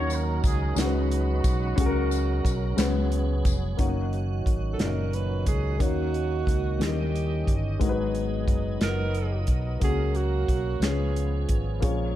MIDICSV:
0, 0, Header, 1, 8, 480
1, 0, Start_track
1, 0, Key_signature, 6, "major"
1, 0, Tempo, 670391
1, 1272, Time_signature, 6, 3, 24, 8
1, 8705, End_track
2, 0, Start_track
2, 0, Title_t, "Alto saxophone"
2, 0, Program_c, 0, 65
2, 3387, Note_on_c, 0, 69, 55
2, 3442, Note_on_c, 0, 70, 75
2, 3453, Note_off_c, 0, 69, 0
2, 3682, Note_on_c, 0, 71, 66
2, 3692, Note_off_c, 0, 70, 0
2, 3917, Note_off_c, 0, 71, 0
2, 3924, Note_on_c, 0, 68, 75
2, 4161, Note_on_c, 0, 66, 81
2, 4171, Note_off_c, 0, 68, 0
2, 4884, Note_on_c, 0, 67, 66
2, 4895, Note_off_c, 0, 66, 0
2, 5419, Note_off_c, 0, 67, 0
2, 6321, Note_on_c, 0, 70, 86
2, 6768, Note_off_c, 0, 70, 0
2, 7045, Note_on_c, 0, 68, 91
2, 7276, Note_on_c, 0, 66, 75
2, 7287, Note_off_c, 0, 68, 0
2, 7759, Note_on_c, 0, 68, 68
2, 7769, Note_off_c, 0, 66, 0
2, 8294, Note_off_c, 0, 68, 0
2, 8705, End_track
3, 0, Start_track
3, 0, Title_t, "Horn section"
3, 0, Program_c, 1, 61
3, 0, Note_on_c, 1, 66, 74
3, 0, Note_on_c, 1, 70, 73
3, 0, Note_on_c, 1, 73, 99
3, 93, Note_off_c, 1, 70, 0
3, 93, Note_off_c, 1, 73, 0
3, 101, Note_on_c, 1, 70, 83
3, 327, Note_off_c, 1, 70, 0
3, 332, Note_on_c, 1, 68, 82
3, 538, Note_off_c, 1, 66, 0
3, 547, Note_off_c, 1, 68, 0
3, 566, Note_on_c, 1, 63, 55
3, 571, Note_on_c, 1, 59, 50
3, 577, Note_on_c, 1, 66, 77
3, 2209, Note_off_c, 1, 63, 0
3, 2212, Note_off_c, 1, 59, 0
3, 2215, Note_off_c, 1, 66, 0
3, 8705, End_track
4, 0, Start_track
4, 0, Title_t, "Grand piano"
4, 0, Program_c, 2, 0
4, 0, Control_c, 2, 64, 127
4, 0, Note_on_c, 2, 51, 66
4, 0, Note_on_c, 2, 58, 71
4, 0, Note_on_c, 2, 61, 72
4, 0, Note_on_c, 2, 63, 72
4, 0, Note_on_c, 2, 66, 71
4, 0, Note_on_c, 2, 73, 79
4, 374, Note_off_c, 2, 58, 0
4, 377, Note_off_c, 2, 61, 0
4, 380, Note_off_c, 2, 63, 0
4, 386, Note_off_c, 2, 73, 0
4, 407, Note_off_c, 2, 66, 0
4, 526, Note_off_c, 2, 51, 0
4, 542, Note_on_c, 2, 56, 63
4, 548, Note_on_c, 2, 49, 62
4, 548, Note_on_c, 2, 61, 54
4, 549, Note_on_c, 2, 63, 59
4, 557, Note_on_c, 2, 66, 55
4, 559, Note_on_c, 2, 70, 51
4, 562, Control_c, 2, 64, 0
4, 603, Note_off_c, 2, 70, 0
4, 611, Note_on_c, 2, 71, 67
4, 687, Control_c, 2, 64, 127
4, 1090, Note_off_c, 2, 56, 0
4, 1093, Note_off_c, 2, 61, 0
4, 1093, Note_off_c, 2, 63, 0
4, 1098, Note_off_c, 2, 66, 0
4, 1124, Note_off_c, 2, 71, 0
4, 1241, Note_off_c, 2, 49, 0
4, 1259, Note_on_c, 2, 61, 90
4, 1272, Note_on_c, 2, 49, 75
4, 1272, Note_on_c, 2, 66, 82
4, 1282, Control_c, 2, 64, 0
4, 1286, Note_on_c, 2, 68, 80
4, 1326, Note_off_c, 2, 68, 0
4, 1331, Note_on_c, 2, 70, 107
4, 1413, Control_c, 2, 64, 127
4, 1808, Note_off_c, 2, 61, 0
4, 1815, Note_off_c, 2, 66, 0
4, 1844, Note_off_c, 2, 70, 0
4, 1963, Note_off_c, 2, 49, 0
4, 1982, Note_on_c, 2, 56, 74
4, 1986, Note_on_c, 2, 59, 68
4, 1991, Note_on_c, 2, 49, 66
4, 1992, Note_on_c, 2, 61, 68
4, 1998, Note_on_c, 2, 66, 70
4, 2000, Control_c, 2, 64, 0
4, 2002, Note_on_c, 2, 71, 80
4, 2142, Control_c, 2, 64, 127
4, 2530, Note_off_c, 2, 56, 0
4, 2532, Note_off_c, 2, 59, 0
4, 2535, Note_off_c, 2, 61, 0
4, 2538, Note_off_c, 2, 66, 0
4, 2540, Note_off_c, 2, 71, 0
4, 2682, Note_off_c, 2, 49, 0
4, 2700, Note_on_c, 2, 58, 68
4, 2707, Note_on_c, 2, 61, 63
4, 2712, Note_on_c, 2, 63, 62
4, 2713, Note_on_c, 2, 66, 71
4, 2719, Control_c, 2, 64, 0
4, 2721, Note_on_c, 2, 73, 75
4, 2854, Control_c, 2, 64, 127
4, 3249, Note_off_c, 2, 58, 0
4, 3252, Note_off_c, 2, 61, 0
4, 3255, Note_off_c, 2, 63, 0
4, 3255, Note_off_c, 2, 66, 0
4, 3259, Note_off_c, 2, 73, 0
4, 3417, Note_on_c, 2, 46, 48
4, 3421, Note_on_c, 2, 61, 49
4, 3430, Note_on_c, 2, 63, 47
4, 3433, Note_on_c, 2, 66, 43
4, 3440, Note_on_c, 2, 74, 46
4, 3483, Note_off_c, 2, 74, 0
4, 3484, Note_on_c, 2, 75, 48
4, 3967, Note_off_c, 2, 46, 0
4, 3970, Note_off_c, 2, 61, 0
4, 3974, Note_off_c, 2, 63, 0
4, 3976, Note_off_c, 2, 66, 0
4, 4001, Note_off_c, 2, 75, 0
4, 4144, Note_on_c, 2, 58, 64
4, 4146, Note_on_c, 2, 61, 56
4, 4150, Note_on_c, 2, 51, 51
4, 4152, Note_on_c, 2, 63, 57
4, 4160, Control_c, 2, 64, 0
4, 4160, Note_on_c, 2, 66, 55
4, 4164, Note_on_c, 2, 73, 70
4, 4291, Control_c, 2, 64, 127
4, 4691, Note_off_c, 2, 58, 0
4, 4693, Note_off_c, 2, 61, 0
4, 4695, Note_off_c, 2, 63, 0
4, 4699, Note_off_c, 2, 66, 0
4, 4702, Note_off_c, 2, 73, 0
4, 4843, Note_off_c, 2, 51, 0
4, 4857, Note_on_c, 2, 55, 46
4, 4863, Note_on_c, 2, 61, 51
4, 4871, Note_on_c, 2, 51, 50
4, 4871, Note_on_c, 2, 63, 44
4, 4875, Note_on_c, 2, 64, 44
4, 4878, Note_on_c, 2, 68, 47
4, 4881, Control_c, 2, 64, 0
4, 4922, Note_off_c, 2, 68, 0
4, 4924, Note_on_c, 2, 70, 56
4, 5025, Control_c, 2, 64, 127
4, 5408, Note_off_c, 2, 55, 0
4, 5411, Note_off_c, 2, 61, 0
4, 5415, Note_off_c, 2, 63, 0
4, 5417, Note_off_c, 2, 64, 0
4, 5442, Note_off_c, 2, 70, 0
4, 5563, Note_off_c, 2, 51, 0
4, 5580, Note_on_c, 2, 56, 78
4, 5583, Note_on_c, 2, 59, 71
4, 5592, Note_on_c, 2, 44, 63
4, 5592, Note_on_c, 2, 63, 65
4, 5597, Note_on_c, 2, 66, 68
4, 5603, Control_c, 2, 64, 0
4, 5603, Note_on_c, 2, 70, 65
4, 5645, Note_off_c, 2, 70, 0
4, 5649, Note_on_c, 2, 71, 85
4, 5727, Control_c, 2, 64, 127
4, 6130, Note_off_c, 2, 56, 0
4, 6131, Note_off_c, 2, 59, 0
4, 6135, Note_off_c, 2, 63, 0
4, 6138, Note_off_c, 2, 66, 0
4, 6164, Note_off_c, 2, 71, 0
4, 6284, Note_off_c, 2, 44, 0
4, 6298, Note_on_c, 2, 59, 56
4, 6307, Note_on_c, 2, 63, 45
4, 6320, Note_on_c, 2, 65, 43
4, 6321, Control_c, 2, 64, 0
4, 6363, Note_off_c, 2, 65, 0
4, 6364, Note_on_c, 2, 66, 57
4, 6463, Control_c, 2, 64, 127
4, 6849, Note_off_c, 2, 59, 0
4, 6853, Note_off_c, 2, 63, 0
4, 6881, Note_off_c, 2, 66, 0
4, 7016, Note_on_c, 2, 58, 62
4, 7026, Note_on_c, 2, 49, 47
4, 7026, Note_on_c, 2, 61, 51
4, 7037, Note_on_c, 2, 66, 70
4, 7041, Control_c, 2, 64, 0
4, 7161, Control_c, 2, 64, 127
4, 7567, Note_off_c, 2, 58, 0
4, 7572, Note_off_c, 2, 61, 0
4, 7577, Note_off_c, 2, 66, 0
4, 7720, Note_off_c, 2, 49, 0
4, 7740, Note_on_c, 2, 59, 50
4, 7746, Note_on_c, 2, 61, 46
4, 7747, Note_on_c, 2, 65, 47
4, 7749, Note_on_c, 2, 49, 47
4, 7757, Note_on_c, 2, 68, 46
4, 7760, Control_c, 2, 64, 0
4, 7761, Note_on_c, 2, 73, 57
4, 7898, Control_c, 2, 64, 127
4, 8288, Note_off_c, 2, 59, 0
4, 8291, Note_off_c, 2, 61, 0
4, 8292, Note_off_c, 2, 65, 0
4, 8297, Note_off_c, 2, 68, 0
4, 8299, Note_off_c, 2, 73, 0
4, 8441, Note_off_c, 2, 49, 0
4, 8451, Note_on_c, 2, 58, 78
4, 8460, Note_on_c, 2, 61, 68
4, 8463, Note_on_c, 2, 46, 60
4, 8463, Note_on_c, 2, 65, 67
4, 8468, Note_on_c, 2, 68, 68
4, 8474, Note_on_c, 2, 73, 82
4, 8480, Control_c, 2, 64, 0
4, 8605, Control_c, 2, 64, 127
4, 8705, Note_off_c, 2, 46, 0
4, 8705, Note_off_c, 2, 58, 0
4, 8705, Note_off_c, 2, 61, 0
4, 8705, Note_off_c, 2, 65, 0
4, 8705, Note_off_c, 2, 68, 0
4, 8705, Note_off_c, 2, 73, 0
4, 8705, End_track
5, 0, Start_track
5, 0, Title_t, "Tonewheel organ"
5, 0, Program_c, 3, 16
5, 0, Note_on_c, 3, 54, 58
5, 0, Note_on_c, 3, 61, 51
5, 0, Note_on_c, 3, 63, 57
5, 0, Note_on_c, 3, 70, 64
5, 552, Note_off_c, 3, 63, 0
5, 556, Note_off_c, 3, 54, 0
5, 556, Note_off_c, 3, 61, 0
5, 557, Note_off_c, 3, 70, 0
5, 560, Note_on_c, 3, 63, 60
5, 563, Note_on_c, 3, 53, 52
5, 563, Note_on_c, 3, 71, 63
5, 564, Note_on_c, 3, 61, 62
5, 605, Note_off_c, 3, 53, 0
5, 606, Note_on_c, 3, 54, 62
5, 1264, Note_off_c, 3, 61, 0
5, 1265, Note_off_c, 3, 54, 0
5, 1273, Note_on_c, 3, 61, 57
5, 1274, Note_on_c, 3, 54, 72
5, 1276, Note_off_c, 3, 63, 0
5, 1277, Note_off_c, 3, 71, 0
5, 1281, Note_on_c, 3, 69, 59
5, 1323, Note_off_c, 3, 69, 0
5, 1326, Note_on_c, 3, 70, 67
5, 1982, Note_off_c, 3, 54, 0
5, 1983, Note_off_c, 3, 61, 0
5, 1990, Note_on_c, 3, 68, 73
5, 1991, Note_on_c, 3, 54, 73
5, 1992, Note_on_c, 3, 61, 68
5, 1993, Note_on_c, 3, 59, 66
5, 2019, Note_off_c, 3, 70, 0
5, 2711, Note_off_c, 3, 54, 0
5, 2711, Note_off_c, 3, 68, 0
5, 2712, Note_off_c, 3, 59, 0
5, 2712, Note_off_c, 3, 61, 0
5, 2733, Note_on_c, 3, 61, 46
5, 2734, Note_on_c, 3, 51, 55
5, 2736, Note_on_c, 3, 65, 48
5, 2737, Note_on_c, 3, 54, 51
5, 2771, Note_off_c, 3, 65, 0
5, 2775, Note_on_c, 3, 66, 63
5, 4134, Note_off_c, 3, 61, 0
5, 4135, Note_off_c, 3, 51, 0
5, 4136, Note_off_c, 3, 54, 0
5, 4153, Note_off_c, 3, 66, 0
5, 4159, Note_on_c, 3, 58, 40
5, 4160, Note_on_c, 3, 51, 46
5, 4161, Note_on_c, 3, 66, 49
5, 4164, Note_on_c, 3, 61, 42
5, 4864, Note_off_c, 3, 61, 0
5, 4868, Note_off_c, 3, 51, 0
5, 4873, Note_on_c, 3, 61, 51
5, 4875, Note_on_c, 3, 67, 56
5, 4876, Note_off_c, 3, 58, 0
5, 4876, Note_on_c, 3, 75, 46
5, 4877, Note_off_c, 3, 66, 0
5, 4877, Note_on_c, 3, 51, 53
5, 5590, Note_on_c, 3, 63, 53
5, 5593, Note_off_c, 3, 61, 0
5, 5594, Note_off_c, 3, 67, 0
5, 5594, Note_off_c, 3, 75, 0
5, 5595, Note_off_c, 3, 51, 0
5, 5595, Note_on_c, 3, 54, 55
5, 5595, Note_on_c, 3, 68, 63
5, 5598, Note_on_c, 3, 59, 54
5, 6312, Note_off_c, 3, 63, 0
5, 6314, Note_off_c, 3, 54, 0
5, 6314, Note_off_c, 3, 68, 0
5, 6316, Note_off_c, 3, 59, 0
5, 6326, Note_on_c, 3, 54, 50
5, 6326, Note_on_c, 3, 63, 49
5, 6328, Note_on_c, 3, 59, 45
5, 6329, Note_on_c, 3, 75, 59
5, 7032, Note_off_c, 3, 54, 0
5, 7035, Note_on_c, 3, 69, 41
5, 7037, Note_on_c, 3, 58, 44
5, 7039, Note_off_c, 3, 63, 0
5, 7040, Note_off_c, 3, 59, 0
5, 7040, Note_on_c, 3, 61, 47
5, 7041, Note_off_c, 3, 75, 0
5, 7041, Note_on_c, 3, 54, 45
5, 7080, Note_on_c, 3, 70, 50
5, 7081, Note_off_c, 3, 69, 0
5, 7751, Note_off_c, 3, 61, 0
5, 7754, Note_off_c, 3, 58, 0
5, 7755, Note_on_c, 3, 53, 52
5, 7756, Note_off_c, 3, 54, 0
5, 7759, Note_on_c, 3, 59, 44
5, 7759, Note_on_c, 3, 61, 43
5, 7763, Note_on_c, 3, 68, 52
5, 7775, Note_off_c, 3, 70, 0
5, 8459, Note_off_c, 3, 61, 0
5, 8463, Note_off_c, 3, 68, 0
5, 8464, Note_off_c, 3, 53, 0
5, 8467, Note_on_c, 3, 61, 54
5, 8471, Note_on_c, 3, 68, 63
5, 8472, Note_on_c, 3, 53, 56
5, 8472, Note_on_c, 3, 56, 49
5, 8474, Note_off_c, 3, 59, 0
5, 8705, Note_off_c, 3, 53, 0
5, 8705, Note_off_c, 3, 56, 0
5, 8705, Note_off_c, 3, 61, 0
5, 8705, Note_off_c, 3, 68, 0
5, 8705, End_track
6, 0, Start_track
6, 0, Title_t, "French horn section"
6, 0, Program_c, 4, 60
6, 2706, Note_on_c, 4, 75, 62
6, 2709, Note_on_c, 4, 54, 59
6, 2711, Note_on_c, 4, 61, 55
6, 4850, Note_off_c, 4, 54, 0
6, 4851, Note_off_c, 4, 61, 0
6, 4861, Note_on_c, 4, 61, 50
6, 4864, Note_on_c, 4, 55, 52
6, 4866, Note_on_c, 4, 51, 59
6, 5579, Note_on_c, 4, 59, 54
6, 5580, Note_off_c, 4, 61, 0
6, 5580, Note_on_c, 4, 54, 65
6, 5581, Note_on_c, 4, 56, 53
6, 5582, Note_off_c, 4, 51, 0
6, 5582, Note_off_c, 4, 55, 0
6, 6292, Note_off_c, 4, 59, 0
6, 6300, Note_off_c, 4, 56, 0
6, 6301, Note_on_c, 4, 59, 50
6, 6304, Note_on_c, 4, 66, 64
6, 7001, Note_off_c, 4, 75, 0
6, 7018, Note_off_c, 4, 66, 0
6, 7020, Note_off_c, 4, 59, 0
6, 7021, Note_on_c, 4, 58, 57
6, 7023, Note_on_c, 4, 61, 53
6, 7027, Note_on_c, 4, 66, 69
6, 7724, Note_off_c, 4, 54, 0
6, 7739, Note_off_c, 4, 58, 0
6, 7740, Note_on_c, 4, 59, 50
6, 7742, Note_off_c, 4, 66, 0
6, 7745, Note_on_c, 4, 65, 70
6, 7746, Note_on_c, 4, 56, 54
6, 8457, Note_off_c, 4, 59, 0
6, 8705, Note_off_c, 4, 56, 0
6, 8705, Note_off_c, 4, 61, 0
6, 8705, Note_off_c, 4, 65, 0
6, 8705, End_track
7, 0, Start_track
7, 0, Title_t, "Fingered electric bass"
7, 0, Program_c, 5, 33
7, 0, Note_on_c, 5, 39, 108
7, 284, Note_off_c, 5, 39, 0
7, 315, Note_on_c, 5, 37, 83
7, 535, Note_off_c, 5, 37, 0
7, 544, Note_on_c, 5, 37, 88
7, 1000, Note_off_c, 5, 37, 0
7, 1033, Note_on_c, 5, 35, 89
7, 1254, Note_off_c, 5, 35, 0
7, 1270, Note_on_c, 5, 37, 93
7, 1722, Note_off_c, 5, 37, 0
7, 1750, Note_on_c, 5, 35, 84
7, 1972, Note_off_c, 5, 35, 0
7, 1988, Note_on_c, 5, 37, 97
7, 2441, Note_off_c, 5, 37, 0
7, 2470, Note_on_c, 5, 29, 87
7, 2692, Note_off_c, 5, 29, 0
7, 2712, Note_on_c, 5, 30, 68
7, 3163, Note_off_c, 5, 30, 0
7, 3190, Note_on_c, 5, 32, 75
7, 3412, Note_off_c, 5, 32, 0
7, 3431, Note_on_c, 5, 30, 67
7, 3912, Note_on_c, 5, 37, 75
7, 3922, Note_off_c, 5, 30, 0
7, 4133, Note_off_c, 5, 37, 0
7, 4154, Note_on_c, 5, 39, 75
7, 4605, Note_off_c, 5, 39, 0
7, 4632, Note_on_c, 5, 37, 60
7, 4853, Note_off_c, 5, 37, 0
7, 4862, Note_on_c, 5, 39, 79
7, 5319, Note_off_c, 5, 39, 0
7, 5347, Note_on_c, 5, 31, 65
7, 5571, Note_off_c, 5, 31, 0
7, 5594, Note_on_c, 5, 32, 83
7, 6065, Note_off_c, 5, 32, 0
7, 6065, Note_on_c, 5, 30, 70
7, 6290, Note_off_c, 5, 30, 0
7, 6309, Note_on_c, 5, 30, 82
7, 6762, Note_off_c, 5, 30, 0
7, 6787, Note_on_c, 5, 35, 70
7, 7010, Note_off_c, 5, 35, 0
7, 7026, Note_on_c, 5, 37, 89
7, 7480, Note_off_c, 5, 37, 0
7, 7506, Note_on_c, 5, 35, 60
7, 7729, Note_off_c, 5, 35, 0
7, 7732, Note_on_c, 5, 37, 76
7, 8193, Note_off_c, 5, 37, 0
7, 8225, Note_on_c, 5, 32, 64
7, 8448, Note_off_c, 5, 32, 0
7, 8465, Note_on_c, 5, 34, 78
7, 8705, Note_off_c, 5, 34, 0
7, 8705, End_track
8, 0, Start_track
8, 0, Title_t, "Drums"
8, 71, Note_on_c, 9, 54, 52
8, 77, Note_on_c, 9, 42, 51
8, 143, Note_off_c, 9, 54, 0
8, 149, Note_off_c, 9, 42, 0
8, 312, Note_on_c, 9, 54, 47
8, 313, Note_on_c, 9, 36, 80
8, 324, Note_on_c, 9, 42, 64
8, 383, Note_off_c, 9, 54, 0
8, 385, Note_off_c, 9, 36, 0
8, 395, Note_off_c, 9, 42, 0
8, 547, Note_on_c, 9, 54, 94
8, 558, Note_on_c, 9, 42, 98
8, 563, Note_on_c, 9, 38, 102
8, 619, Note_off_c, 9, 54, 0
8, 630, Note_off_c, 9, 42, 0
8, 635, Note_off_c, 9, 38, 0
8, 798, Note_on_c, 9, 42, 62
8, 870, Note_off_c, 9, 42, 0
8, 1033, Note_on_c, 9, 36, 90
8, 1033, Note_on_c, 9, 42, 81
8, 1033, Note_on_c, 9, 54, 55
8, 1104, Note_off_c, 9, 36, 0
8, 1104, Note_off_c, 9, 42, 0
8, 1105, Note_off_c, 9, 54, 0
8, 1273, Note_on_c, 9, 36, 118
8, 1273, Note_on_c, 9, 42, 100
8, 1344, Note_off_c, 9, 36, 0
8, 1345, Note_off_c, 9, 42, 0
8, 1513, Note_on_c, 9, 54, 48
8, 1518, Note_on_c, 9, 42, 52
8, 1584, Note_off_c, 9, 54, 0
8, 1590, Note_off_c, 9, 42, 0
8, 1752, Note_on_c, 9, 36, 78
8, 1759, Note_on_c, 9, 42, 71
8, 1761, Note_on_c, 9, 54, 50
8, 1824, Note_off_c, 9, 36, 0
8, 1831, Note_off_c, 9, 42, 0
8, 1833, Note_off_c, 9, 54, 0
8, 1990, Note_on_c, 9, 42, 83
8, 1990, Note_on_c, 9, 54, 85
8, 1995, Note_on_c, 9, 38, 106
8, 2062, Note_off_c, 9, 42, 0
8, 2062, Note_off_c, 9, 54, 0
8, 2066, Note_off_c, 9, 38, 0
8, 2232, Note_on_c, 9, 42, 58
8, 2304, Note_off_c, 9, 42, 0
8, 2470, Note_on_c, 9, 42, 75
8, 2471, Note_on_c, 9, 36, 84
8, 2480, Note_on_c, 9, 54, 56
8, 2542, Note_off_c, 9, 42, 0
8, 2543, Note_off_c, 9, 36, 0
8, 2552, Note_off_c, 9, 54, 0
8, 2712, Note_on_c, 9, 36, 90
8, 2712, Note_on_c, 9, 42, 76
8, 2783, Note_off_c, 9, 42, 0
8, 2784, Note_off_c, 9, 36, 0
8, 2956, Note_on_c, 9, 42, 36
8, 3028, Note_off_c, 9, 42, 0
8, 3193, Note_on_c, 9, 36, 64
8, 3200, Note_on_c, 9, 42, 50
8, 3265, Note_off_c, 9, 36, 0
8, 3271, Note_off_c, 9, 42, 0
8, 3432, Note_on_c, 9, 42, 70
8, 3437, Note_on_c, 9, 38, 86
8, 3504, Note_off_c, 9, 42, 0
8, 3508, Note_off_c, 9, 38, 0
8, 3676, Note_on_c, 9, 42, 44
8, 3747, Note_off_c, 9, 42, 0
8, 3912, Note_on_c, 9, 42, 66
8, 3913, Note_on_c, 9, 36, 74
8, 3984, Note_off_c, 9, 36, 0
8, 3984, Note_off_c, 9, 42, 0
8, 4154, Note_on_c, 9, 36, 89
8, 4155, Note_on_c, 9, 42, 80
8, 4225, Note_off_c, 9, 36, 0
8, 4227, Note_off_c, 9, 42, 0
8, 4398, Note_on_c, 9, 42, 37
8, 4470, Note_off_c, 9, 42, 0
8, 4632, Note_on_c, 9, 36, 69
8, 4643, Note_on_c, 9, 42, 55
8, 4704, Note_off_c, 9, 36, 0
8, 4714, Note_off_c, 9, 42, 0
8, 4876, Note_on_c, 9, 42, 70
8, 4881, Note_on_c, 9, 38, 89
8, 4948, Note_off_c, 9, 42, 0
8, 4952, Note_off_c, 9, 38, 0
8, 5123, Note_on_c, 9, 42, 44
8, 5194, Note_off_c, 9, 42, 0
8, 5352, Note_on_c, 9, 36, 65
8, 5355, Note_on_c, 9, 42, 64
8, 5423, Note_off_c, 9, 36, 0
8, 5427, Note_off_c, 9, 42, 0
8, 5591, Note_on_c, 9, 36, 86
8, 5592, Note_on_c, 9, 42, 82
8, 5662, Note_off_c, 9, 36, 0
8, 5664, Note_off_c, 9, 42, 0
8, 5833, Note_on_c, 9, 42, 42
8, 5904, Note_off_c, 9, 42, 0
8, 6069, Note_on_c, 9, 36, 67
8, 6072, Note_on_c, 9, 42, 49
8, 6140, Note_off_c, 9, 36, 0
8, 6144, Note_off_c, 9, 42, 0
8, 6306, Note_on_c, 9, 42, 68
8, 6311, Note_on_c, 9, 38, 95
8, 6378, Note_off_c, 9, 42, 0
8, 6383, Note_off_c, 9, 38, 0
8, 6548, Note_on_c, 9, 42, 48
8, 6620, Note_off_c, 9, 42, 0
8, 6780, Note_on_c, 9, 42, 62
8, 6786, Note_on_c, 9, 36, 69
8, 6852, Note_off_c, 9, 42, 0
8, 6858, Note_off_c, 9, 36, 0
8, 7027, Note_on_c, 9, 42, 73
8, 7028, Note_on_c, 9, 36, 85
8, 7099, Note_off_c, 9, 42, 0
8, 7100, Note_off_c, 9, 36, 0
8, 7264, Note_on_c, 9, 42, 38
8, 7336, Note_off_c, 9, 42, 0
8, 7507, Note_on_c, 9, 36, 69
8, 7509, Note_on_c, 9, 42, 53
8, 7578, Note_off_c, 9, 36, 0
8, 7581, Note_off_c, 9, 42, 0
8, 7748, Note_on_c, 9, 42, 74
8, 7752, Note_on_c, 9, 38, 88
8, 7819, Note_off_c, 9, 42, 0
8, 7824, Note_off_c, 9, 38, 0
8, 7993, Note_on_c, 9, 42, 50
8, 8065, Note_off_c, 9, 42, 0
8, 8224, Note_on_c, 9, 42, 64
8, 8229, Note_on_c, 9, 36, 71
8, 8296, Note_off_c, 9, 42, 0
8, 8300, Note_off_c, 9, 36, 0
8, 8466, Note_on_c, 9, 42, 84
8, 8470, Note_on_c, 9, 36, 93
8, 8538, Note_off_c, 9, 42, 0
8, 8541, Note_off_c, 9, 36, 0
8, 8705, End_track
0, 0, End_of_file